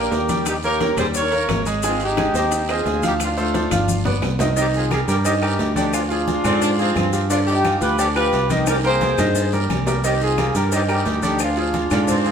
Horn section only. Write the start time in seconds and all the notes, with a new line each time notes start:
Already playing: G4 A#4
0.47 D#4 G4
0.64 G4 A#4
0.99 G#4 C5
1.16 A#4 C#5
1.85 C4 F4
2.03 D#4 G4
2.37 D#4 G4
2.71 F4 G#4
3.06 D#4 G4
3.23 D4 F4
3.39 D4 F4
4.59 D#4 G4
4.76 F4 G#4
4.93 D#4 G#4
5.09 G4 A#4
5.25 D#4 G4
5.42 D#4 G4
5.76 D#4 G4
5.93 D4 F4
6.09 D4 F4
7.30 D4 F4
7.47 D#4 G4
7.80 G4 B4
7.99 D4 G4
8.16 G4 B4
8.51 D#4 G4
8.68 G4 A#4
8.86 G#4 C5
10.06 D#4 G4
10.23 F4 G#4
10.57 G4 A#4
10.75 D#4 G4
10.91 D#4 G4
11.26 D#4 G4
11.42 D4 F4
11.60 D4 F4